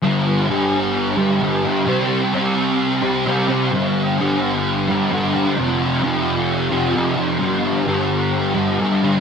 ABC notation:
X:1
M:4/4
L:1/8
Q:1/4=130
K:Clyd
V:1 name="Distorted electric guitar" clef=bass
[G,,D,G,]2 [G,,D,G,]3 [G,,D,G,] [G,,D,G,] [D,G,] | [C,G,C]2 [C,G,C]3 [C,G,C] [C,G,C] [G,C] | [G,,D,G,]2 [G,,D,G,]3 [G,,D,G,] [G,,D,G,] [D,G,] | [=F,,C,=F,]2 [F,,C,F,]3 [F,,C,F,] [F,,C,F,] [C,F,] |
[G,,D,G,]2 [G,,D,G,]3 [G,,D,G,] [G,,D,G,] [D,G,] |]